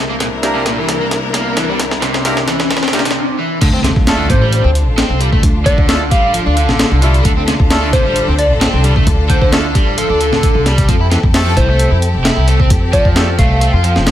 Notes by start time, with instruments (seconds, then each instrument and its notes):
Already playing: string section C2 C3 D4 E4 A#4, riser
0.10 overdriven electric guitar A#3
0.20 overdriven electric guitar A#2, snare, closed hi-hat
0.43 horn section A#3 D4 E4 G4 A#4, snare, closed hi-hat
0.55 overdriven electric guitar C3
0.66 overdriven electric guitar A#2, snare, closed hi-hat
0.78 overdriven electric guitar E3
0.89 snare, closed hi-hat
1.01 overdriven electric guitar A#3
1.11 snare, closed hi-hat
1.34 overdriven electric guitar A#3, snare, closed hi-hat
1.57 overdriven electric guitar E3, snare, closed hi-hat
1.69 overdriven electric guitar G3
1.79 snare, closed hi-hat
1.91 snare
2.02 overdriven electric guitar C3, snare, closed hi-hat
2.14 snare
2.25 horn section A#3 D4 E4 G4 A#4, snare, closed hi-hat
2.37 snare
2.48 overdriven electric guitar E3, snare, closed hi-hat
2.60 snare
2.70 overdriven electric guitar E3, snare, closed hi-hat
2.77 snare
2.82 overdriven electric guitar C4, snare
2.88 snare
2.93 overdriven electric guitar C3, horn section A#3 D4 E4 G4 A#4, snare, closed hi-hat
2.99 snare
3.05 snare, closed hi-hat
3.11 snare
3.39 overdriven electric guitar E3
3.61 upright bass D2, string section D3 D4 F4 A4, overdriven electric guitar D3, kick, closed hi-hat, crash, impact
3.74 overdriven electric guitar C4
3.84 overdriven electric guitar C3, snare, closed hi-hat
3.96 upright bass D2, kick
4.07 horn section A3 D4 E4 F4 A4, snare, closed hi-hat
4.19 overdriven electric guitar D3
4.29 upright bass A1, overdriven electric guitar C3, digital synth lead C5, kick, closed hi-hat
4.41 overdriven electric guitar G3
4.53 closed hi-hat
4.64 upright bass D2, overdriven electric guitar C4
4.75 closed hi-hat
4.87 upright bass A1
4.97 overdriven electric guitar C4, snare, closed hi-hat
5.10 upright bass C2
5.20 overdriven electric guitar G3, closed hi-hat
5.32 overdriven electric guitar A3, kick
5.43 upright bass D2, kick, closed hi-hat
5.66 overdriven electric guitar D3, digital synth lead D5, kick, closed hi-hat
5.78 upright bass D2, kick
5.88 horn section A3 D4 E4 F4 A4, snare, closed hi-hat
6.11 upright bass A1, overdriven electric guitar G3, digital synth lead F5, kick, closed hi-hat
6.34 overdriven electric guitar F3, closed hi-hat
6.46 upright bass D2, overdriven electric guitar D4
6.56 overdriven electric guitar D3, closed hi-hat
6.69 upright bass A1, snare
6.79 snare, closed hi-hat
6.91 upright bass C2
7.02 overdriven electric guitar G3, horn section A3 D4 E4 F4 A4, closed hi-hat
7.14 closed hi-hat
7.24 upright bass D2, overdriven electric guitar D3, kick, closed hi-hat
7.37 overdriven electric guitar C4
7.47 overdriven electric guitar C3, snare, closed hi-hat
7.60 upright bass D2, kick
7.70 horn section A3 D4 E4 F4 A4, snare, closed hi-hat
7.82 overdriven electric guitar D3
7.93 upright bass A1, overdriven electric guitar C3, digital synth lead C5, kick, closed hi-hat
8.05 overdriven electric guitar G3
8.16 closed hi-hat
8.28 upright bass D2, overdriven electric guitar C4
8.39 digital synth lead D5, closed hi-hat
8.51 upright bass A1
8.61 overdriven electric guitar C4, snare, closed hi-hat
8.73 upright bass C2
8.84 overdriven electric guitar G3, closed hi-hat
8.96 overdriven electric guitar A3, kick
9.07 upright bass D2, kick, closed hi-hat
9.29 overdriven electric guitar D3, digital synth lead C5, kick, closed hi-hat
9.42 upright bass D2, digital synth lead C5, kick
9.52 horn section A3 D4 E4 F4 A4, snare, closed hi-hat
9.75 upright bass A1, overdriven electric guitar G3, kick, closed hi-hat
9.98 overdriven electric guitar F3, digital synth lead A4, closed hi-hat
10.10 upright bass D2, overdriven electric guitar D4
10.20 overdriven electric guitar D3, closed hi-hat
10.32 upright bass A1, snare
10.43 kick, closed hi-hat
10.55 upright bass C2
10.66 overdriven electric guitar G3, snare, closed hi-hat
10.78 kick, closed hi-hat
10.89 upright bass F2, overdriven electric guitar F3, string section C4 G4, kick, closed hi-hat
11.00 overdriven electric guitar E4
11.11 overdriven electric guitar E3, snare, closed hi-hat
11.23 upright bass F2, kick
11.34 horn section A3 C4 E4 G4 A4, snare, closed hi-hat
11.46 overdriven electric guitar F3
11.57 upright bass C2, overdriven electric guitar E3, digital synth lead C5, kick, closed hi-hat
11.69 overdriven electric guitar A3
11.79 closed hi-hat
11.91 upright bass F2, overdriven electric guitar E4
12.02 closed hi-hat
12.14 upright bass F1
12.25 overdriven electric guitar E4, snare, closed hi-hat
12.37 upright bass C2
12.47 overdriven electric guitar A3, closed hi-hat
12.60 overdriven electric guitar C4, kick
12.70 upright bass F2, kick, closed hi-hat
12.93 overdriven electric guitar F3, digital synth lead D5, kick, closed hi-hat
13.05 upright bass F2, kick
13.16 horn section A3 C4 E4 G4 A4, snare, closed hi-hat
13.38 upright bass C2, overdriven electric guitar A3, digital synth lead F5, kick, closed hi-hat
13.61 overdriven electric guitar A3, closed hi-hat
13.73 upright bass F2, overdriven electric guitar F4
13.84 overdriven electric guitar F3, closed hi-hat
13.96 upright bass F1, snare
14.07 snare, closed hi-hat